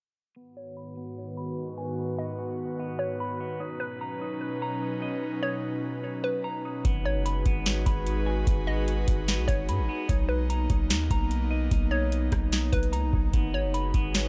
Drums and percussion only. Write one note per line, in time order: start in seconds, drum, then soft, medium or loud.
6.85 kick loud
6.85 closed hi-hat medium
7.26 closed hi-hat medium
7.46 kick loud
7.46 closed hi-hat medium
7.66 snare loud
7.66 closed hi-hat medium
7.86 kick medium
7.86 closed hi-hat medium
8.07 closed hi-hat medium
8.47 kick loud
8.47 closed hi-hat medium
8.88 closed hi-hat medium
9.08 kick loud
9.08 closed hi-hat medium
9.28 snare loud
9.28 closed hi-hat medium
9.48 kick medium
9.48 closed hi-hat medium
9.69 closed hi-hat medium
10.09 kick loud
10.09 closed hi-hat medium
10.50 closed hi-hat medium
10.70 kick loud
10.70 closed hi-hat medium
10.90 snare loud
10.90 closed hi-hat medium
11.11 kick medium
11.11 closed hi-hat medium
11.31 closed hi-hat medium
11.71 kick loud
11.71 closed hi-hat medium
12.12 closed hi-hat medium
12.32 kick medium
12.32 cross-stick loud
12.32 closed hi-hat medium
12.52 snare loud
12.52 closed hi-hat medium
12.73 kick loud
12.73 closed hi-hat medium
12.83 closed hi-hat soft
12.93 closed hi-hat medium
13.13 kick loud
13.34 kick loud
13.34 closed hi-hat medium
13.74 closed hi-hat medium
13.94 kick loud
13.94 closed hi-hat medium
14.14 snare loud
14.14 closed hi-hat medium